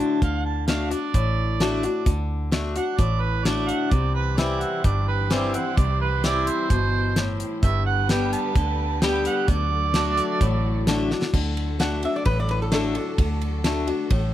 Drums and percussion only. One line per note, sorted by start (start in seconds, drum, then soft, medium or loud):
0.22 kick loud
0.22 closed hi-hat medium
0.68 snare loud
0.68 closed hi-hat medium
0.91 closed hi-hat medium
1.14 kick loud
1.14 closed hi-hat medium
1.60 snare loud
1.60 closed hi-hat medium
1.83 closed hi-hat medium
2.06 kick loud
2.06 closed hi-hat medium
2.52 snare loud
2.52 closed hi-hat medium
2.76 closed hi-hat medium
2.98 kick loud
2.98 closed hi-hat medium
3.45 snare loud
3.45 closed hi-hat medium
3.69 closed hi-hat medium
3.91 kick loud
3.91 closed hi-hat medium
4.38 snare loud
4.38 closed hi-hat medium
4.61 closed hi-hat medium
4.84 kick loud
4.84 closed hi-hat medium
5.31 snare loud
5.31 closed hi-hat medium
5.54 closed hi-hat medium
5.77 kick loud
5.77 closed hi-hat medium
6.24 snare loud
6.24 closed hi-hat medium
6.47 closed hi-hat medium
6.70 kick loud
6.70 closed hi-hat medium
7.16 snare loud
7.16 closed hi-hat medium
7.40 closed hi-hat medium
7.63 kick loud
7.63 closed hi-hat medium
8.09 snare loud
8.09 closed hi-hat medium
8.33 closed hi-hat medium
8.55 kick loud
8.55 closed hi-hat medium
9.02 snare loud
9.02 closed hi-hat medium
9.25 closed hi-hat medium
9.48 kick loud
9.48 closed hi-hat medium
9.94 snare loud
9.94 closed hi-hat medium
10.17 closed hi-hat medium
10.41 kick loud
10.41 closed hi-hat medium
10.87 snare loud
10.87 closed hi-hat medium
11.11 snare medium
11.22 snare medium
11.34 kick loud
11.34 crash loud
11.57 ride medium
11.80 snare loud
11.80 ride medium
12.03 ride medium
12.25 kick loud
12.25 ride medium
12.49 ride medium
12.72 snare loud
12.72 ride medium
12.95 ride medium
13.18 kick loud
13.18 ride medium
13.41 ride medium
13.64 snare loud
13.64 ride medium
13.87 ride medium
14.10 kick loud
14.10 ride medium